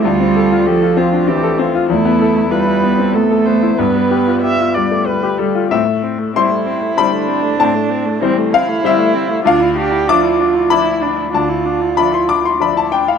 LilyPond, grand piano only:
\new Staff \with { instrumentName = "Grand piano" } { \time 3/4 \key a \minor \tempo 4 = 96 << { r2. | r2. | r2. | e''4 c'''4 b''4 |
a''4. f''8 e''4 | f''4 d'''4 b''4 | a''4 b''16 c'''16 d'''16 c'''16 b''16 a''16 g''16 f''16 | } \\ { d,16 c'16 a'16 f'16 g'16 f'16 c'16 d'16 c'16 a'16 c'16 f'16 | e,16 b16 a'16 e'16 f'16 e'16 b16 c'16 b16 a'16 b16 e'16 | g,16 g16 g'16 f'16 g'16 f'16 g16 a16 g16 g'16 g16 f'16 | a,4 <g e' c''>4 <g e' c''>4 |
a,4 <e g c''>4 <g e' c''>4 | d,4 <f d'' e''>4 <f e' d''>4 | d,4 <f d'' e''>4 <f d'' e''>4 | } >> }